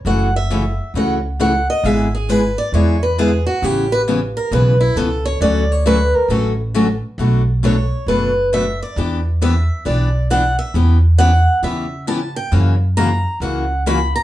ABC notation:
X:1
M:4/4
L:1/8
Q:"Swing" 1/4=135
K:D
V:1 name="Steel-string acoustic guitar"
f e3 f z f _e | e ^G B d c B G F | G B z _B =B E A c | d c B _B A z3 |
[K:Bm] z2 c2 B2 e d | z2 e2 d2 f e | z2 f2 e2 a g | z2 ^a2 f2 b a |]
V:2 name="Steel-string acoustic guitar"
[C,E,A,CF] z [C,E,A,CF] z [C,E,A,CF] z [C,E,A,CF] z | [D,^G,B,E^G] z [D,G,B,EG] z [D,G,B,EG] z [D,G,B,EG] z | [C,E,B,C] z [C,E,B,C] z [C,E,B,C] z [C,E,B,C] z | [D,F,A,CF] z [D,F,A,CF] z [D,F,A,CF] z [D,F,A,CF] z |
[K:Bm] [B,,F,A,DF] z [B,,F,A,DF] z [B,,F,A,DF] z [B,,F,A,DF] z | [E,B,DG] z [E,B,DG] z [E,B,DG] z [E,B,DG] z | [E,B,CG] z [E,B,CG] z [E,B,CG] z [E,B,CG] z | [C,E,^A,CF] z [C,E,A,CF] z [C,E,A,CF] z [C,E,A,CF] z |]
V:3 name="Upright bass" clef=bass
F,,,4 C,,4 | ^G,,,4 E,,4 | A,,,4 B,,,2 C,,2 | D,,4 A,,,4 |
[K:Bm] B,,,4 F,,,4 | E,,4 B,,,4 | E,,4 C,4 | F,,4 C,,4 |]